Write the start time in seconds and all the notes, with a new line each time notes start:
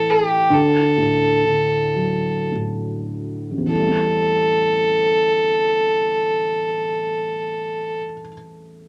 Already playing: A2 E3 C4 E4 A4
0.10 G#4
0.27 G4
0.50 D2 A4
0.98 A2
1.46 D3
1.96 F#3
2.52 A2
3.51 A1
3.58 E2
3.66 E3 A4
3.74 G3
3.81 A3
3.88 C4